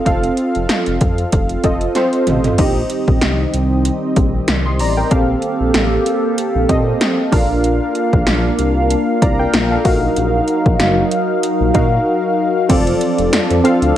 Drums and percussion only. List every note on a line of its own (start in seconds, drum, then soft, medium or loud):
0.06 kick medium
0.06 closed hi-hat medium
0.24 closed hi-hat medium
0.37 closed hi-hat medium
0.55 closed hi-hat soft
0.69 snare loud
0.69 closed hi-hat medium
0.86 closed hi-hat soft
1.01 kick medium
1.01 closed hi-hat medium
1.18 closed hi-hat soft
1.32 kick medium
1.32 closed hi-hat medium
1.49 closed hi-hat soft
1.64 kick medium
1.64 closed hi-hat medium
1.81 closed hi-hat medium
1.95 snare soft
1.95 closed hi-hat medium
2.13 closed hi-hat medium
2.27 closed hi-hat medium
2.27 mid tom medium
2.44 closed hi-hat soft
2.44 floor tom medium
2.58 kick loud
2.58 closed hi-hat medium
2.58 crash medium
2.90 closed hi-hat medium
3.08 kick medium
3.21 snare loud
3.21 closed hi-hat medium
3.54 closed hi-hat medium
3.85 closed hi-hat medium
4.16 kick medium
4.16 closed hi-hat medium
4.48 snare loud
4.48 closed hi-hat medium
4.79 open hi-hat medium
5.11 kick loud
5.11 closed hi-hat medium
5.42 closed hi-hat medium
5.74 snare loud
5.74 closed hi-hat medium
6.06 closed hi-hat medium
6.38 closed hi-hat loud
6.69 kick medium
6.69 closed hi-hat medium
7.01 snare loud
7.01 closed hi-hat medium
7.32 kick loud
7.32 open hi-hat medium
7.64 closed hi-hat medium
7.95 closed hi-hat medium
8.13 kick medium
8.27 snare loud
8.27 closed hi-hat medium
8.59 closed hi-hat medium
8.90 closed hi-hat loud
9.22 kick medium
9.22 closed hi-hat medium
9.54 snare loud
9.54 closed hi-hat medium
9.85 kick loud
9.85 open hi-hat medium
10.16 closed hi-hat medium
10.48 closed hi-hat medium
10.66 kick medium
10.80 snare loud
10.80 closed hi-hat medium
11.11 closed hi-hat medium
11.43 closed hi-hat loud
11.75 kick medium
11.75 closed hi-hat medium
12.70 kick loud
12.70 closed hi-hat medium
12.70 crash medium
12.87 closed hi-hat medium
13.01 closed hi-hat medium
13.18 closed hi-hat soft
13.33 snare loud
13.33 closed hi-hat medium
13.33 tambourine medium
13.50 closed hi-hat medium
13.65 closed hi-hat medium
13.82 closed hi-hat soft